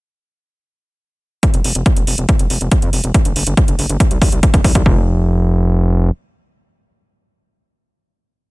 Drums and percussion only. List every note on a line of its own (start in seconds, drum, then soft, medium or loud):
1.43 kick loud
1.43 closed hi-hat medium
1.54 closed hi-hat medium
1.64 open hi-hat loud
1.75 closed hi-hat medium
1.86 kick loud
1.86 closed hi-hat medium
1.97 closed hi-hat soft
2.07 open hi-hat medium
2.18 closed hi-hat medium
2.29 kick loud
2.29 closed hi-hat medium
2.39 closed hi-hat medium
2.50 open hi-hat loud
2.61 closed hi-hat soft
2.71 kick loud
2.71 closed hi-hat medium
2.82 closed hi-hat medium
2.93 open hi-hat medium
3.04 closed hi-hat medium
3.14 kick loud
3.14 closed hi-hat medium
3.25 closed hi-hat medium
3.36 open hi-hat loud
3.47 closed hi-hat medium
3.57 kick loud
3.57 closed hi-hat medium
3.68 closed hi-hat medium
3.79 open hi-hat medium
3.89 closed hi-hat medium
4.00 kick loud
4.00 closed hi-hat medium
4.11 closed hi-hat medium
4.22 kick loud
4.22 open hi-hat loud
4.32 closed hi-hat medium
4.43 kick loud
4.43 closed hi-hat medium
4.54 kick loud
4.54 closed hi-hat medium
4.64 kick loud
4.64 open hi-hat loud
4.75 kick medium
4.75 closed hi-hat medium
4.86 kick loud